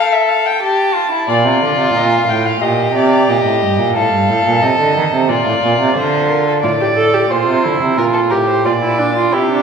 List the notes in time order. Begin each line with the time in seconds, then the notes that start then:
Already playing: A4 F5
0.13 E5
0.29 F5
0.46 G5
0.62 G4 A5
0.94 F4
1.11 E4
1.28 A#2 F4 D5
1.45 C3
1.62 D3
1.78 C3
1.94 A#2 D#5
2.12 F5
2.27 A2 G5
2.46 F5
2.61 A#2 G4 D#5
2.94 C3 D5
3.29 A#2 D#5
3.46 A2
3.62 G2
3.79 A#2
3.96 A2 A4 F5
4.13 G2
4.29 A2
4.46 A#2
4.62 C3 D#5
4.79 D3
4.96 D#3
5.12 C3
5.29 A#2 F4 D5
5.46 A2
5.63 A#2
5.80 C3
5.96 D3 F4 C5
6.29 A#4
6.47 A4
6.62 A2 F4 D5
6.80 G4
6.96 A4
7.14 G4
7.30 A#2 F4 C5
7.48 C3
7.64 D3 E4
7.81 C3
7.97 A#2 F4 A#4
8.13 A4
8.30 A2 G4 A#4
8.48 C5
8.65 A#2 F4 D5
8.83 E4
8.99 D4
9.16 F4
9.33 C3 E4 G4
9.51 D4